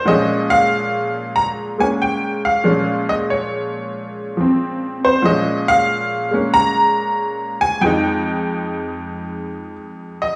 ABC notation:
X:1
M:4/4
L:1/8
Q:"Swing" 1/4=93
K:Bbdor
V:1 name="Honky-tonk piano"
e f3 b a g f- | f e d3 z2 c | e f3 b3 a | g6 z e |]
V:2 name="Honky-tonk piano" clef=bass
[B,,F,A,D]4- [B,,F,A,D] [A,B,D]3 | [B,,F,A,D]4- [B,,F,A,D] [F,C]3 | [B,,F,A,D]3 [A,B,D]4- [A,B,D] | [F,,F,A,E]8 |]